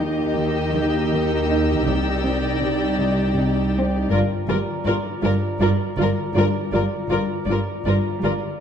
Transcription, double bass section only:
0.00 1.81 D#2 medium
1.86 4.11 C2 medium
4.10 4.18 G1 medium
4.48 4.56 G1 medium
4.86 4.94 G1 medium
5.23 5.31 G1 medium
5.60 5.68 G1 medium
5.97 6.05 G1 medium
6.35 6.43 G1 medium
6.73 6.81 G1 medium
7.10 7.18 G1 medium
7.47 7.55 G1 soft
7.85 7.93 G1 medium
8.23 8.31 G1 medium

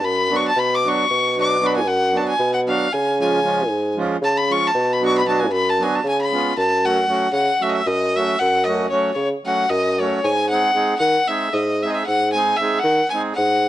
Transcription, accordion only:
0.29 0.50 F#3 medium
0.29 0.51 B3 medium
0.29 0.51 D4 medium
0.29 0.51 F#4 medium
0.84 1.05 F#3 medium
0.84 1.05 B3 medium
0.84 1.05 D4 medium
0.84 1.06 F#4 medium
1.36 1.56 F#3 medium
1.36 1.57 B3 medium
1.36 1.57 D4 medium
1.36 1.57 F#4 medium
1.60 1.80 F#3 medium
1.60 1.80 B3 medium
1.60 1.80 D4 medium
1.60 1.81 F#4 medium
2.13 2.33 F#3 medium
2.13 2.34 B3 medium
2.13 2.34 D4 medium
2.13 2.34 F#4 medium
2.66 2.87 F#3 medium
2.66 2.87 B3 medium
2.66 2.88 D4 medium
2.66 2.88 F#4 medium
3.20 3.39 F3 medium
3.20 3.39 G#3 medium
3.20 3.39 C#4 medium
3.20 3.40 F4 medium
3.43 3.62 F3 medium
3.43 3.63 G#3 medium
3.43 3.63 C#4 medium
3.43 3.63 F4 medium
3.96 4.16 F3 medium
3.96 4.16 G#3 medium
3.96 4.17 C#4 medium
3.96 4.17 F4 medium
4.50 4.70 F3 medium
4.50 4.70 G#3 medium
4.50 4.70 C#4 medium
4.50 4.70 F4 medium
5.01 5.21 F#3 medium
5.01 5.21 B3 medium
5.01 5.22 D4 medium
5.01 5.22 F#4 medium
5.26 5.45 F#3 medium
5.26 5.46 B3 medium
5.26 5.46 D4 medium
5.26 5.46 F#4 medium
5.79 5.99 F#3 medium
5.79 6.00 B3 medium
5.79 6.00 D4 medium
5.79 6.00 F#4 medium
6.32 6.52 G#3 medium
6.32 6.53 B3 medium
6.32 6.53 C#4 medium
6.32 6.54 F4 medium
6.84 7.04 F#3 medium
6.84 7.04 A3 soft
6.84 7.04 C#4 medium
6.84 7.05 F#4 medium
7.07 7.27 F#3 medium
7.07 7.27 A3 medium
7.07 7.28 C#4 medium
7.07 7.28 F#4 medium
7.60 7.81 F#3 medium
7.60 7.81 A3 medium
7.60 7.81 C#4 medium
7.60 7.82 F#4 medium
8.14 8.35 F#3 medium
8.14 8.36 A3 soft
8.14 8.36 C#4 soft
8.14 8.36 F#4 medium
8.66 8.86 F#3 medium
8.66 8.86 A3 medium
8.66 8.87 C#4 soft
8.66 8.87 F#4 medium
8.90 9.10 F#3 medium
8.90 9.11 A3 medium
8.90 9.11 C#4 medium
8.90 9.11 F#4 medium
9.45 9.65 F#3 medium
9.45 9.65 A3 medium
9.45 9.65 C#4 medium
9.45 9.66 F#4 medium
9.99 10.19 F#3 medium
9.99 10.19 A3 medium
9.99 10.20 C#4 medium
9.99 10.20 F#4 medium
10.51 10.70 G#3 medium
10.51 10.70 C4 medium
10.51 10.71 D#4 medium
10.51 10.71 G#4 medium
10.73 10.94 G#3 medium
10.73 10.94 C4 medium
10.73 10.95 D#4 medium
10.73 10.94 G#4 medium
11.28 11.48 G#3 medium
11.28 11.48 C4 medium
11.28 11.49 D#4 medium
11.28 11.49 G#4 medium
11.83 12.03 G#3 medium
11.83 12.03 C4 medium
11.83 12.03 D#4 medium
11.83 12.04 G#4 medium
12.34 12.54 G#3 medium
12.34 12.55 C4 medium
12.34 12.55 D#4 soft
12.34 12.55 G#4 medium
12.60 12.79 G#3 medium
12.60 12.79 C4 medium
12.60 12.79 D#4 medium
12.60 12.80 G#4 medium
13.12 13.33 G#3 medium
13.12 13.33 C4 soft
13.12 13.33 D#4 medium
13.12 13.34 G#4 medium

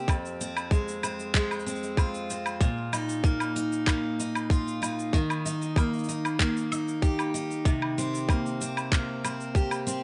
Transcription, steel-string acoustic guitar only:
0.00 0.15 A#3 medium
0.00 0.40 C4 medium
0.00 0.15 G4 medium
0.09 2.61 F2 medium
0.41 1.02 C4 medium
0.72 1.34 G#3 medium
1.04 1.65 C4 medium
1.36 2.68 G#3 medium
1.66 2.29 C4 medium
1.98 2.96 F4 medium
2.30 2.68 C4 medium
2.61 5.14 A#2 medium
2.93 3.56 D#4 medium
3.24 3.88 A#3 medium
3.56 4.19 D#4 medium
3.88 5.77 A#3 medium
4.20 4.81 D#4 medium
4.51 5.20 F4 medium
4.82 5.45 D#4 medium
5.14 8.64 D#3 medium
5.46 6.08 D#4 medium
5.77 6.40 A#3 medium
6.09 6.72 D#4 medium
6.40 8.01 A#3 medium
6.72 7.34 D#4 medium
7.03 9.55 G4 medium
7.34 7.98 D#4 medium
7.66 10.03 C3 medium
7.98 8.61 C4 medium
8.30 8.91 A#3 medium
8.61 9.24 C4 medium
8.93 10.03 A#3 medium
9.24 9.86 C4 medium
9.56 10.03 G4 medium
9.87 10.03 C4 medium

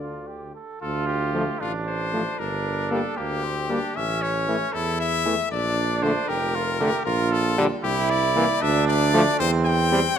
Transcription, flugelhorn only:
0.00 0.29 F4 medium
0.27 0.54 G4 medium
0.55 0.81 A4 medium
0.81 1.62 F4 loud
1.61 2.39 D4 loud
2.39 3.19 D4 loud
3.18 3.45 A#3 medium
3.44 3.72 C4 medium
3.71 3.96 D4 medium
3.96 4.76 C#4 loud
4.74 5.35 E4 loud
5.52 6.31 D4 loud
6.29 6.57 G4 loud
6.55 6.80 F4 loud
6.81 7.05 G4 loud
7.06 7.55 F4 loud
7.83 8.63 E4 loud
8.61 9.41 D4 loud
9.39 10.17 C4 loud

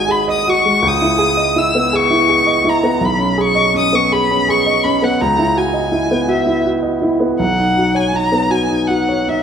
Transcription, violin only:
0.00 0.12 G#5 medium
0.11 0.28 B5 medium
0.31 0.51 D#6 medium
0.50 0.89 C#6 medium
0.87 1.60 D#6 medium
1.58 1.97 E6 medium
1.95 2.71 C#6 medium
2.69 3.06 A#5 medium
3.05 3.43 B5 medium
3.41 3.77 C#6 medium
3.78 3.97 D#6 medium
3.95 4.14 C#6 medium
4.12 4.52 B5 medium
4.50 4.85 C#6 medium
4.84 5.05 B5 medium
5.04 5.22 F#5 medium
5.21 5.59 A#5 medium
5.58 6.31 G#5 medium
6.29 6.65 E5 medium
7.40 7.97 F#5 medium
7.96 8.17 G#5 medium
8.16 8.53 A#5 medium
8.51 8.89 G#5 medium
8.88 9.30 F#5 medium
9.29 9.43 E5 medium

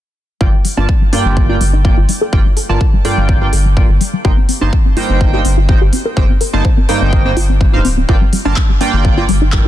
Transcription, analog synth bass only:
0.41 0.50 G1 medium
0.77 0.86 G1 medium
1.25 1.56 G1 medium
1.61 1.92 G1 medium
1.97 2.06 G1 medium
2.33 2.42 G1 medium
2.69 2.78 G1 medium
3.17 3.48 G1 loud
3.53 3.84 G1 loud
3.90 3.98 G1 medium
4.25 4.34 G1 loud
4.62 4.70 G1 medium
5.09 5.40 G1 loud
5.45 5.76 G1 loud
5.81 5.90 G1 medium
6.17 6.26 G1 medium
6.53 6.62 G1 medium
7.01 7.32 G1 medium
7.37 7.68 G1 medium
7.73 8.04 D1 medium
8.09 8.18 G1 medium
8.45 8.54 G1 medium
8.93 9.24 G1 loud
9.29 9.60 G1 loud

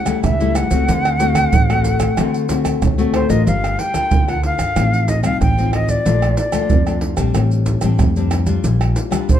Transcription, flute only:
0.00 0.23 F#5 medium
0.24 0.57 E5 medium
0.56 2.82 F#5 loud
3.14 3.31 C5 medium
3.30 3.46 D#5 medium
3.47 3.81 F5 medium
3.80 4.31 G5 loud
4.29 4.45 F#5 medium
4.46 5.11 F5 loud
5.09 5.24 D#5 medium
5.25 5.40 F5 medium
5.42 5.71 G5 medium
5.74 5.92 D#5 medium
5.90 6.38 D5 medium
6.39 6.99 D5 medium
9.31 9.40 C5 medium

